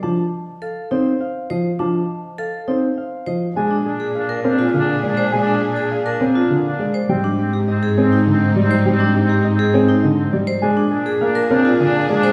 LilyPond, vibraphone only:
\new Staff \with { instrumentName = "Vibraphone" } { \time 3/4 \key f \mixolydian \tempo 4 = 102 d'16 r8. a'16 r16 ees'16 r8. c''16 r16 | d'16 r8. a'16 r16 ees'16 r8. c''16 r16 | \key bes \mixolydian r16 d'16 r16 aes'16 r16 bes'16 r16 f'16 r8. c''16 | r16 d'16 r16 aes'16 r16 bes'16 r16 f'16 r8. c''16 |
r16 d'16 r16 g'16 r16 aes'16 r16 ees'16 r8. c''16 | r16 d'16 r16 g'16 r16 aes'16 r16 ees'16 r8. c''16 | r16 d'16 r16 aes'16 r16 bes'16 r16 f'16 r8. c''16 | }